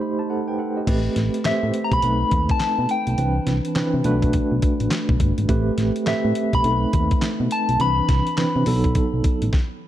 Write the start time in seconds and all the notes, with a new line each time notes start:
Already playing: A3 D#4 G4 C5
0.01 D#5 B5
0.19 C5 A5
0.30 A4 F#5
0.48 B4 G5
0.59 A4 F#5
0.77 G4 D#5
0.87 A1 A3 C4 G4 B4, kick, closed hi-hat, crash
1.16 A1, snare, closed hi-hat
1.34 closed hi-hat
1.45 A2 A3 C4 G4 C5 E5, snare, clap, closed hi-hat
1.63 A2
1.74 closed hi-hat
1.84 A#5
1.92 B1 B5, kick, closed hi-hat
2.02 B1 A3 C4 D#4 B4, closed hi-hat
2.31 D#2, kick, closed hi-hat
2.49 A5, kick, closed hi-hat
2.60 snare, clap, closed hi-hat
2.79 B2
2.89 G5, closed hi-hat
3.07 B1, closed hi-hat
3.18 C2 E3 C4 D4 B4, closed hi-hat
3.47 C2, snare, closed hi-hat
3.65 closed hi-hat
3.75 C3 E3 C4 D4 B4, snare, clap, closed hi-hat
3.94 C3
4.04 B1 A3 D4 F#4 B4, closed hi-hat
4.22 kick, closed hi-hat
4.33 kick, closed hi-hat
4.52 B1
4.62 kick, closed hi-hat
4.80 A1, closed hi-hat
4.91 snare, clap, closed hi-hat
5.09 B1, kick
5.20 G1, kick, closed hi-hat
5.38 G#1, closed hi-hat
5.49 A1 A3 C4 G4 B4, kick, closed hi-hat
5.78 A1, snare, closed hi-hat
5.96 closed hi-hat
6.06 A2 A3 C4 G4 B4 E5, snare, clap, closed hi-hat
6.25 A2
6.35 closed hi-hat
6.53 B1 B5, kick, closed hi-hat
6.64 B1 A3 C4 D#4 A4, closed hi-hat
6.72 B4
6.93 D#2, kick, closed hi-hat
7.11 kick, closed hi-hat
7.22 snare, clap, closed hi-hat
7.40 B2
7.51 A5, closed hi-hat
7.69 B1, closed hi-hat
7.80 C2 E3 C4 D4 B4 B5, closed hi-hat
8.09 C2, kick, snare, closed hi-hat
8.27 closed hi-hat
8.37 C3 E3 C4 D4 B4, snare, clap, closed hi-hat
8.56 C3
8.66 B1 F#3 B3 D#4 A4, open hi-hat
8.84 kick, closed hi-hat
8.95 kick, closed hi-hat
9.14 B1
9.24 kick, closed hi-hat
9.42 A1, closed hi-hat
9.53 kick, snare